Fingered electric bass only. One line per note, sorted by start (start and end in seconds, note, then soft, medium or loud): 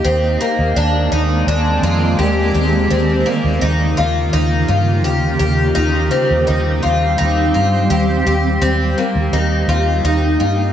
0.05 0.36 D#2 medium
0.59 0.74 D#2 medium
0.76 1.08 D#2 medium
1.12 1.43 D#2 medium
1.47 1.79 D#2 medium
1.83 2.14 F2 medium
2.19 2.50 D#2 medium
2.55 2.86 D#2 medium
2.91 3.22 D#2 medium
3.44 3.60 D#2 medium
3.62 3.93 D#2 medium
3.99 4.30 D#2 medium
4.34 4.65 D#2 medium
4.69 5.04 G2 medium
5.04 5.36 D#2 medium
5.40 5.72 D#2 medium
5.77 6.08 D#2 medium
6.31 6.46 D#2 medium
6.49 6.80 D#2 medium
6.85 7.16 D#2 medium
7.21 7.51 D#2 medium
7.55 7.87 G2 medium
7.90 8.22 D#2 medium
8.27 8.58 D#2 medium
8.62 8.93 D#2 medium
9.15 9.31 D#2 medium
9.33 9.64 D#2 medium
9.68 10.00 D#2 medium
10.04 10.36 D#2 medium
10.41 10.72 G2 medium